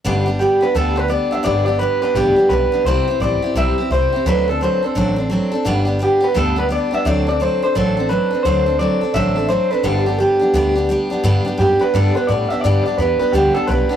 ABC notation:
X:1
M:4/4
L:1/8
Q:"Swing" 1/4=172
K:G
V:1 name="Clean electric guitar"
z2 G B A B d e | d d B B G2 B2 | c2 d2 e2 c2 | B A c A4 z |
z2 G B A B d e | d d c c A2 B2 | c2 d2 e2 c B | A2 G4- G z |
z2 G B A B d e | d d B B G A B2 |]
V:2 name="Steel-string acoustic guitar"
[G,,D,G,B,DG] [G,B,DG] [G,B,DG] [G,B,DG] [G,,D,G,B,DG] [G,B,DG] [G,B,DG] [G,B,DG] | [G,,D,G,B,DG] [G,B,DG] [G,B,DG] [G,B,DG] [G,,D,G,B,DG] [G,B,DG] [G,B,DG] [G,B,DG] | [C,G,CEG] [CEG] [G,CEG] [CEG] [C,G,CEG] [CEG] [G,CEG] [CEG] | [D,F,CDA] [CDA] [F,CDA] [CDA] [D,F,CDA] [CDA] [F,CDA] [CDA] |
[G,,D,G,B,DG] [G,B,DG] [G,B,DG] [G,B,DG] [G,,D,G,B,DG] [G,B,DG] [G,B,DG] [G,B,DG] | [D,F,CDA] [CDA] [F,CDA] [CDA] [D,F,CDA] [CDA] [F,CDA] [CDA] | [D,F,CDA] [CDA] [F,CDA] [CDA] [D,F,CDA] [CDA] [F,CDA] [CDA] | [G,,D,G,B,DG] [G,B,DG] [G,B,DG] [G,B,DG] [G,,D,G,B,DG] [G,B,DG] [G,B,DG] [G,B,DG] |
[G,,D,G,B,DG] [G,B,DG] [G,B,DG] [G,B,DG] [G,,D,G,B,DG] [G,B,DG] [G,B,DG] [G,B,DG] | [G,,D,G,B,DG] [G,B,DG] [G,B,DG] [G,B,DG] [G,,D,G,B,DG] [G,B,DG] [G,B,DG] [G,B,DG] |]
V:3 name="Upright bass" clef=bass
G,,,3 z D,,3 z | G,,,3 z A,,, z B,,, z | C,, z A,,, z B,,, z C,, z | D,,3 z A,,,3 z |
G,,,3 z D,,3 z | D,,3 z A,,,3 z | D,,3 z A,,,3 z | G,,,3 z D,,3 z |
G,, z F,, z G,, z A,, z | G,, z E,, z D,, z B,,, z |]